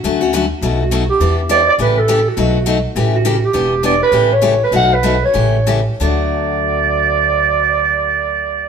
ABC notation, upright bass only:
X:1
M:4/4
L:1/8
Q:"Swing" 1/4=204
K:D
V:1 name="Upright bass" clef=bass
D,,4 B,,,4 | E,,4 A,,,4 | B,,,4 A,,,4 | E,,,4 A,,,4 |
B,,,4 A,,,4 | D,,8- | D,,8 |]